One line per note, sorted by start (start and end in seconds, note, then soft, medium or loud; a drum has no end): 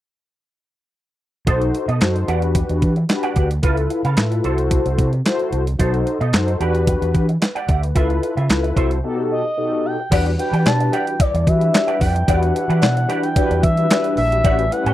1.46 1.68 B1 medium
1.46 1.64 D#4 medium
1.46 1.85 D#4 medium
1.46 1.86 F#4 medium
1.46 1.61 A4 medium
1.46 1.86 A4 medium
1.46 1.86 C5 loud
1.46 1.60 C5 medium
1.46 kick loud
1.46 closed hi-hat medium
1.61 muted clean electric guitar stroke soft
1.61 closed hi-hat soft
1.73 muted clean electric guitar stroke soft
1.73 closed hi-hat medium
1.88 1.98 B2 medium
1.88 2.01 D#4 medium
1.88 2.01 A4 medium
1.88 2.00 D#5 medium
1.88 closed hi-hat soft
2.01 2.22 F#2 medium
2.01 2.28 D#4 medium
2.01 2.27 F#4 medium
2.01 2.28 A4 medium
2.01 2.28 C5 medium
2.01 snare loud
2.01 clap medium
2.01 closed hi-hat medium
2.15 muted clean electric guitar stroke soft
2.15 closed hi-hat soft
2.27 2.60 E2 medium
2.27 2.94 D4 medium
2.27 2.94 F#4 medium
2.27 2.45 G4 medium
2.27 2.94 G4 medium
2.27 2.94 B4 loud
2.27 2.42 D5 loud
2.27 2.41 F#5 loud
2.27 closed hi-hat medium
2.42 muted clean electric guitar stroke soft
2.42 closed hi-hat soft
2.55 muted clean electric guitar stroke soft
2.55 kick loud
2.55 closed hi-hat loud
2.69 2.79 E2 medium
2.69 muted clean electric guitar stroke soft
2.69 closed hi-hat soft
2.82 3.03 E3 loud
2.82 kick medium
2.82 closed hi-hat medium
2.96 muted clean electric guitar stroke soft
2.96 closed hi-hat soft
3.09 3.48 D4 medium
3.09 3.48 F#4 medium
3.09 3.48 G4 medium
3.09 3.48 B4 medium
3.09 muted clean electric guitar stroke soft
3.09 snare loud
3.09 clap medium
3.09 closed hi-hat medium
3.23 3.34 G4 medium
3.23 3.35 D5 medium
3.23 3.36 F#5 medium
3.23 closed hi-hat soft
3.36 3.57 D2 medium
3.36 3.50 G4 medium
3.36 3.50 D5 medium
3.36 3.49 F#5 medium
3.36 kick medium
3.36 closed hi-hat medium
3.50 muted clean electric guitar stroke soft
3.50 closed hi-hat medium
3.63 3.84 C#2 medium
3.63 4.02 E4 loud
3.63 4.02 F4 medium
3.63 3.80 A4 medium
3.63 4.02 A4 medium
3.63 3.77 B4 medium
3.63 4.02 B4 medium
3.63 3.76 F5 medium
3.63 kick medium
3.63 closed hi-hat medium
3.77 muted clean electric guitar stroke soft
3.77 closed hi-hat soft
3.90 muted clean electric guitar stroke soft
3.90 closed hi-hat medium
4.04 4.14 C#3 loud
4.04 4.17 A4 soft
4.04 4.17 B4 medium
4.04 4.17 F5 medium
4.04 closed hi-hat soft
4.17 4.38 A2 medium
4.17 4.43 E4 medium
4.17 4.44 F4 medium
4.17 4.43 A4 medium
4.17 4.45 B4 medium
4.17 snare loud
4.17 clap medium
4.17 closed hi-hat medium
4.31 muted clean electric guitar stroke soft
4.31 closed hi-hat soft
4.44 4.76 C2 medium
4.44 5.10 E4 medium
4.44 4.61 E4 medium
4.44 5.10 F#4 medium
4.44 5.10 A4 medium
4.44 4.58 A4 loud
4.44 5.10 C5 medium
4.44 4.57 C5 loud
4.44 closed hi-hat medium
4.58 muted clean electric guitar stroke soft
4.58 closed hi-hat soft
4.71 muted clean electric guitar stroke soft
4.71 kick loud
4.71 closed hi-hat loud
4.85 4.95 C2 medium
4.85 muted clean electric guitar stroke soft
4.85 closed hi-hat soft
4.98 5.19 C3 loud
4.98 kick medium
4.98 closed hi-hat medium
5.12 muted clean electric guitar stroke soft
5.12 closed hi-hat soft
5.25 5.64 E4 medium
5.25 5.64 F#4 medium
5.25 5.64 A4 medium
5.25 5.64 C5 loud
5.25 muted clean electric guitar stroke soft
5.25 snare loud
5.25 clap medium
5.25 closed hi-hat loud
5.39 muted clean electric guitar stroke soft
5.39 closed hi-hat soft
5.52 5.73 C2 medium
5.52 closed hi-hat medium
5.67 muted clean electric guitar stroke soft
5.67 closed hi-hat medium
5.79 6.00 B1 loud
5.79 5.96 D#4 medium
5.79 6.18 D#4 medium
5.79 6.18 F#4 medium
5.79 5.93 A4 medium
5.79 6.18 A4 medium
5.79 6.18 C5 medium
5.79 5.92 C5 medium
5.79 kick medium
5.79 closed hi-hat medium
5.93 muted clean electric guitar stroke soft
5.93 closed hi-hat soft
6.06 muted clean electric guitar stroke soft
6.06 closed hi-hat medium
6.20 6.31 B2 loud
6.20 6.33 D#4 medium
6.20 6.33 A4 medium
6.20 6.33 D#5 medium
6.20 closed hi-hat soft
6.33 6.54 F#2 medium
6.33 6.60 D#4 medium
6.33 6.59 F#4 medium
6.33 6.61 A4 medium
6.33 6.61 C5 medium
6.33 snare loud
6.33 clap medium
6.33 closed hi-hat medium
6.47 muted clean electric guitar stroke medium
6.47 closed hi-hat soft
6.60 6.92 E2 medium
6.60 7.26 D4 medium
6.60 7.26 F#4 medium
6.60 6.78 G4 medium
6.60 7.26 G4 medium
6.60 7.26 B4 loud
6.60 6.74 D5 medium
6.60 6.73 F#5 medium
6.60 closed hi-hat medium
6.74 muted clean electric guitar stroke soft
6.74 closed hi-hat soft
6.87 muted clean electric guitar stroke soft
6.87 kick loud
6.87 closed hi-hat loud
7.01 7.11 E2 loud
7.01 muted clean electric guitar stroke medium
7.01 closed hi-hat soft
7.15 7.35 E3 loud
7.15 kick medium
7.15 closed hi-hat medium
7.28 muted clean electric guitar stroke medium
7.28 closed hi-hat soft
7.41 7.55 B4 medium
7.41 muted clean electric guitar stroke soft
7.41 snare loud
7.41 clap medium
7.41 closed hi-hat loud
7.55 7.67 G4 medium
7.55 7.68 D5 medium
7.55 7.67 D5 medium
7.55 7.68 F#5 medium
7.55 closed hi-hat soft
7.68 7.89 D2 medium
7.68 7.82 G4 medium
7.68 7.82 D5 medium
7.68 7.82 E5 medium
7.68 7.81 F#5 medium
7.68 kick medium
7.68 closed hi-hat medium
7.82 7.95 B4 medium
7.82 muted clean electric guitar stroke soft
7.82 closed hi-hat medium
7.95 8.16 C#2 loud
7.95 8.34 E4 medium
7.95 8.13 F4 medium
7.95 8.34 F4 medium
7.95 8.34 A4 medium
7.95 8.09 B4 medium
7.95 8.34 B4 medium
7.95 8.08 E5 medium
7.95 kick medium
7.95 closed hi-hat medium
8.09 muted clean electric guitar stroke soft
8.09 closed hi-hat soft
8.22 muted clean electric guitar stroke soft
8.22 closed hi-hat medium
8.36 8.47 C#3 medium
8.36 8.50 F4 soft
8.36 8.49 B4 medium
8.36 8.49 E5 soft
8.36 closed hi-hat soft
8.49 8.70 C#2 medium
8.49 8.75 E4 medium
8.49 8.77 F4 medium
8.49 8.76 A4 medium
8.49 8.77 B4 loud
8.49 snare loud
8.49 clap medium
8.49 closed hi-hat medium
8.63 muted clean electric guitar stroke soft
8.63 closed hi-hat soft
8.76 8.97 C2 medium
8.76 8.99 E4 medium
8.76 8.99 F#4 medium
8.76 8.94 A4 medium
8.76 8.99 A4 medium
8.76 8.90 C5 medium
8.76 8.99 C5 loud
8.76 8.89 E5 loud
8.76 kick medium
8.76 closed hi-hat medium
8.91 muted clean electric guitar stroke soft
8.91 closed hi-hat soft
9.03 9.42 B2 loud
9.03 9.42 D#4 medium
9.03 9.42 F#4 medium
9.03 9.43 G4 medium
9.03 9.43 A4 loud
9.03 muted clean electric guitar stroke soft
9.17 muted clean electric guitar stroke soft
9.32 9.87 D#5 loud
9.44 muted clean electric guitar stroke soft
9.57 9.96 B2 medium
9.57 9.96 D#4 medium
9.57 9.96 F#4 medium
9.57 9.97 G4 medium
9.57 9.97 A4 medium
9.57 muted clean electric guitar stroke soft
9.71 muted clean electric guitar stroke soft
9.86 10.12 G5 loud
9.99 muted clean electric guitar stroke soft
10.11 10.33 E2 loud
10.11 14.41 E3 medium
10.11 14.94 G3 medium
10.11 10.31 D4 medium
10.11 14.40 D4 medium
10.11 14.40 E4 medium
10.11 10.31 F#4 medium
10.11 10.29 G4 medium
10.11 10.31 G4 medium
10.11 10.32 B4 medium
10.11 10.25 D5 medium
10.11 10.24 F#5 loud
10.11 10.24 F#5 medium
10.11 kick loud
10.11 closed hi-hat medium
10.11 crash medium
10.11 cowbell medium
10.26 muted clean electric guitar stroke soft
10.26 closed hi-hat soft
10.38 11.15 D4 medium
10.38 11.15 F#4 medium
10.38 11.15 G4 medium
10.38 11.15 B4 medium
10.38 10.67 G5 loud
10.38 muted clean electric guitar stroke soft
10.38 closed hi-hat medium
10.53 10.63 E3 loud
10.53 10.66 G4 medium
10.53 10.66 D5 soft
10.53 10.65 G5 medium
10.53 closed hi-hat soft
10.66 10.87 B2 medium
10.66 10.93 A5 loud
10.66 snare loud
10.66 clap loud
10.66 closed hi-hat medium
10.66 cowbell medium
10.80 muted clean electric guitar stroke soft
10.80 closed hi-hat medium
10.92 11.10 G4 loud
10.92 11.06 D5 loud
10.92 11.06 F#5 loud
10.92 11.22 G5 loud
10.92 closed hi-hat medium
11.07 muted clean electric guitar stroke soft
11.07 closed hi-hat soft
11.19 11.49 D5 loud
11.19 muted clean electric guitar stroke soft
11.19 kick loud
11.19 closed hi-hat loud
11.19 cowbell medium
11.34 11.44 E2 loud
11.34 muted clean electric guitar stroke medium
11.34 closed hi-hat medium
11.46 11.68 E3 medium
11.46 12.04 D4 medium
11.46 12.04 F#4 medium
11.46 12.04 G4 medium
11.46 12.04 B4 medium
11.46 12.00 E5 loud
11.46 kick medium
11.46 closed hi-hat medium
11.61 muted clean electric guitar stroke medium
11.61 closed hi-hat soft
11.73 muted clean electric guitar stroke soft
11.73 snare loud
11.73 clap loud
11.73 closed hi-hat loud
11.73 cowbell medium
11.87 11.99 G4 medium
11.87 12.00 D5 medium
11.87 12.00 F#5 medium
11.87 closed hi-hat soft
12.00 12.22 F2 loud
12.00 12.15 G4 medium
12.00 12.15 D5 medium
12.00 12.14 F#5 medium
12.00 12.38 G5 loud
12.00 kick medium
12.00 open hi-hat medium
12.15 muted clean electric guitar stroke medium
12.15 closed hi-hat medium
12.28 12.49 E2 loud
12.28 12.85 D4 medium
12.28 12.85 F#4 medium
12.28 12.45 G4 medium
12.28 12.85 G4 medium
12.28 12.85 B4 medium
12.28 12.42 D5 medium
12.28 12.41 F#5 loud
12.28 kick loud
12.28 closed hi-hat medium
12.28 cowbell medium
12.38 12.55 F#5 loud
12.42 muted clean electric guitar stroke soft
12.42 closed hi-hat soft
12.55 13.25 F#5 loud
12.55 muted clean electric guitar stroke soft
12.55 closed hi-hat medium
12.69 12.79 E3 loud
12.69 12.82 G4 soft
12.69 12.82 D5 medium
12.69 12.82 F#5 medium
12.69 closed hi-hat soft
12.82 13.03 B2 loud
12.82 snare loud
12.82 clap medium
12.82 closed hi-hat medium
12.82 cowbell medium
12.96 muted clean electric guitar stroke medium
12.96 closed hi-hat soft
13.09 13.29 D4 medium
13.09 13.29 F#4 medium
13.09 13.26 G4 loud
13.09 13.29 G4 medium
13.09 13.29 B4 medium
13.09 13.23 D5 loud
13.09 13.22 F#5 loud
13.09 closed hi-hat medium
13.23 13.62 G5 loud
13.23 muted clean electric guitar stroke soft
13.23 closed hi-hat soft
13.36 13.65 D4 medium
13.36 13.65 F#4 medium
13.36 13.65 G4 medium
13.36 13.65 B4 loud
13.36 muted clean electric guitar stroke soft
13.36 kick loud
13.36 closed hi-hat loud
13.36 cowbell medium
13.50 13.60 E2 medium
13.50 muted clean electric guitar stroke soft
13.50 closed hi-hat medium
13.63 13.84 E3 loud
13.63 14.13 E5 loud
13.63 kick loud
13.63 closed hi-hat medium
13.77 13.86 D4 medium
13.77 13.87 F#4 medium
13.77 13.87 G4 medium
13.77 13.87 B4 medium
13.77 muted clean electric guitar stroke soft
13.77 closed hi-hat soft
13.90 14.19 D4 medium
13.90 14.19 F#4 medium
13.90 14.19 G4 medium
13.90 14.19 B4 loud
13.90 muted clean electric guitar stroke soft
13.90 snare loud
13.90 clap loud
13.90 closed hi-hat loud
13.90 cowbell medium
14.04 muted clean electric guitar stroke medium
14.04 closed hi-hat soft
14.17 14.38 A#1 loud
14.17 14.73 E5 loud
14.17 open hi-hat medium
14.31 14.41 D4 medium
14.31 14.41 F#4 medium
14.31 14.41 G4 medium
14.31 14.41 B4 medium
14.31 muted clean electric guitar stroke medium
14.31 closed hi-hat medium
14.44 14.65 A1 loud
14.44 14.94 A3 medium
14.44 14.64 C#4 medium
14.44 14.94 C#4 medium
14.44 14.64 F#4 medium
14.44 14.62 G4 medium
14.44 14.64 G4 medium
14.44 14.64 B4 medium
14.44 14.58 C#5 medium
14.44 14.57 F#5 loud
14.44 kick loud
14.44 closed hi-hat medium
14.44 cowbell medium
14.59 muted clean electric guitar stroke medium
14.59 closed hi-hat soft
14.71 14.94 C#4 medium
14.71 14.94 E4 medium
14.71 14.94 G4 medium
14.71 14.94 B4 medium
14.71 14.94 F#5 loud
14.71 muted clean electric guitar stroke medium
14.71 closed hi-hat medium
14.86 14.94 A2 loud
14.86 14.94 G4 medium
14.86 14.94 C#5 medium
14.86 14.94 G5 medium
14.86 closed hi-hat medium